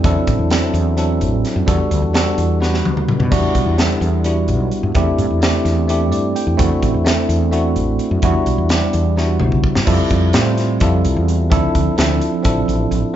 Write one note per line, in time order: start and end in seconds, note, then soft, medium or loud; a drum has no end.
0.03 0.15 E2 medium
0.03 0.48 F#3 medium
0.03 0.48 C4 medium
0.03 0.48 D4 medium
0.03 0.48 E4 medium
0.03 0.49 A4 medium
0.03 kick loud
0.03 closed hi-hat medium
0.27 0.38 A1 medium
0.27 kick medium
0.27 closed hi-hat medium
0.39 0.61 E2 medium
0.50 0.95 F#3 medium
0.50 0.95 C4 medium
0.50 0.95 D4 medium
0.50 0.95 E4 medium
0.50 0.96 A4 medium
0.50 snare medium
0.50 closed hi-hat medium
0.74 1.23 E2 medium
0.74 closed hi-hat medium
0.97 1.68 F#3 medium
0.97 1.68 C4 medium
0.97 1.66 D4 medium
0.97 1.68 E4 medium
0.97 1.67 A4 medium
0.97 closed hi-hat medium
1.21 1.43 A1 medium
1.21 closed hi-hat medium
1.45 snare soft
1.45 closed hi-hat medium
1.56 1.67 F#2 medium
1.66 1.79 E2 medium
1.66 2.11 G3 medium
1.66 2.12 B3 medium
1.66 2.12 D4 medium
1.66 2.12 F#4 medium
1.66 2.12 A4 medium
1.66 kick loud
1.66 closed hi-hat medium
1.91 2.02 D2 medium
1.91 closed hi-hat medium
2.02 2.24 E2 medium
2.14 2.58 G3 medium
2.14 2.58 B3 medium
2.14 2.58 D4 medium
2.14 2.59 F#4 medium
2.14 2.59 A4 medium
2.14 snare medium
2.14 closed hi-hat medium
2.38 2.84 E2 medium
2.38 closed hi-hat medium
2.60 3.29 G3 medium
2.60 3.30 B3 medium
2.60 3.30 D4 medium
2.60 3.31 F#4 medium
2.60 3.32 B4 medium
2.60 snare soft
2.74 snare soft
2.84 3.07 D2 medium
2.84 high tom medium
2.97 mid tom medium
3.09 mid tom medium
3.20 3.31 B2 medium
3.20 floor tom medium
3.31 3.43 E2 medium
3.31 3.75 G3 medium
3.31 3.76 B3 medium
3.31 3.76 D4 medium
3.31 3.76 E4 medium
3.31 3.76 F#4 medium
3.31 kick medium
3.31 closed hi-hat medium
3.31 crash medium
3.55 3.65 B1 medium
3.55 kick medium
3.55 closed hi-hat medium
3.66 3.88 E2 medium
3.77 4.22 G3 medium
3.77 4.22 B3 medium
3.77 4.22 D4 medium
3.77 4.23 E4 medium
3.77 4.23 A4 medium
3.77 snare medium
3.77 closed hi-hat medium
4.01 4.50 E2 medium
4.01 closed hi-hat soft
4.24 4.96 G3 medium
4.24 4.96 B3 medium
4.24 4.95 D4 medium
4.24 4.95 E4 medium
4.24 4.96 F#4 medium
4.24 closed hi-hat medium
4.48 4.71 B1 medium
4.48 closed hi-hat medium
4.72 closed hi-hat medium
4.83 4.95 G2 medium
4.95 5.07 E2 loud
4.95 5.39 A3 medium
4.95 5.40 C4 medium
4.95 5.40 D4 medium
4.95 5.40 E4 medium
4.95 5.40 G4 medium
4.95 kick medium
4.95 closed hi-hat medium
5.18 5.30 G2 medium
5.18 closed hi-hat medium
5.30 5.53 E2 medium
5.41 5.86 A3 medium
5.41 5.87 C4 medium
5.41 5.87 D4 medium
5.41 5.87 E4 medium
5.41 5.87 G4 medium
5.41 snare loud
5.41 closed hi-hat medium
5.65 6.12 E2 medium
5.65 snare soft
5.65 closed hi-hat medium
5.88 6.56 A3 medium
5.88 6.57 C4 medium
5.88 6.57 D4 medium
5.88 6.57 E4 medium
5.88 6.60 G4 medium
5.88 closed hi-hat medium
6.12 6.34 G2 medium
6.12 6.34 D5 medium
6.12 closed hi-hat medium
6.36 6.58 G5 medium
6.36 closed hi-hat medium
6.47 6.58 E2 medium
6.57 6.71 E2 medium
6.57 7.03 A3 medium
6.57 7.03 C4 medium
6.57 7.03 D4 medium
6.57 7.03 E4 medium
6.57 7.04 F#4 medium
6.57 kick loud
6.57 closed hi-hat medium
6.83 6.93 A1 medium
6.83 kick medium
6.83 closed hi-hat medium
6.94 7.16 E2 medium
7.05 7.50 A3 medium
7.05 7.50 C4 medium
7.05 7.50 D4 medium
7.05 7.50 E4 medium
7.05 7.51 A4 medium
7.05 snare loud
7.05 closed hi-hat medium
7.29 7.77 E2 medium
7.29 closed hi-hat medium
7.51 8.23 A3 medium
7.51 8.23 C4 medium
7.51 8.22 D4 medium
7.51 8.23 E4 medium
7.51 8.24 F#4 medium
7.51 closed hi-hat medium
7.76 7.98 A1 medium
7.76 closed hi-hat soft
7.99 closed hi-hat medium
8.11 8.22 F#2 medium
8.22 8.34 E2 medium
8.22 8.67 G3 medium
8.22 8.67 B3 medium
8.22 8.68 D4 medium
8.22 8.68 E4 medium
8.22 8.68 F#4 medium
8.22 kick medium
8.22 closed hi-hat medium
8.46 8.58 B1 medium
8.46 closed hi-hat medium
8.58 8.80 E2 medium
8.69 9.14 G3 medium
8.69 9.14 B3 medium
8.69 9.15 D4 medium
8.69 9.15 E4 medium
8.69 9.15 G4 medium
8.69 snare medium
8.69 closed hi-hat medium
8.93 9.42 E2 medium
8.93 closed hi-hat medium
9.17 9.84 G3 medium
9.17 9.88 B3 medium
9.17 9.88 D4 medium
9.17 9.86 E4 medium
9.17 9.88 F#4 medium
9.17 snare soft
9.40 9.62 B1 medium
9.40 mid tom medium
9.52 kick medium
9.64 kick medium
9.75 9.87 G2 medium
9.75 snare medium
9.86 9.98 F2 medium
9.86 10.30 G3 medium
9.86 10.31 C4 medium
9.86 10.31 E4 medium
9.86 10.31 F4 medium
9.86 10.32 A4 medium
9.86 kick loud
9.86 crash medium
10.10 10.32 F2 medium
10.10 kick medium
10.10 closed hi-hat medium
10.33 10.78 A2 medium
10.33 10.78 G3 medium
10.33 10.78 C4 medium
10.33 10.78 E4 medium
10.33 10.78 F4 medium
10.33 10.78 C5 medium
10.33 snare loud
10.33 closed hi-hat medium
10.58 snare soft
10.58 closed hi-hat medium
10.80 11.03 F2 loud
10.80 11.51 G3 medium
10.80 11.49 C4 medium
10.80 11.50 E4 medium
10.80 11.52 F4 medium
10.80 11.51 A4 medium
10.80 kick medium
10.80 closed hi-hat medium
11.05 11.16 C2 medium
11.05 closed hi-hat medium
11.16 11.49 E2 medium
11.28 closed hi-hat medium
11.50 11.62 D2 medium
11.50 11.94 F3 medium
11.50 11.95 C4 medium
11.50 11.95 D4 medium
11.50 11.95 E4 medium
11.50 11.95 A4 medium
11.50 kick loud
11.50 closed hi-hat medium
11.75 11.86 D2 medium
11.75 kick medium
11.75 closed hi-hat medium
11.97 12.20 D2 medium
11.97 12.41 F3 medium
11.97 12.42 C4 medium
11.97 12.42 D4 medium
11.97 12.42 E4 medium
11.97 12.42 A4 medium
11.97 snare loud
11.97 closed hi-hat medium
12.21 closed hi-hat medium
12.43 12.67 A1 medium
12.43 13.12 F3 medium
12.43 13.14 C4 medium
12.43 13.14 D4 medium
12.43 13.14 E4 medium
12.43 13.15 A4 medium
12.43 kick medium
12.43 closed hi-hat medium
12.68 12.90 A1 medium
12.68 closed hi-hat medium
12.91 13.02 A1 medium
12.91 closed hi-hat medium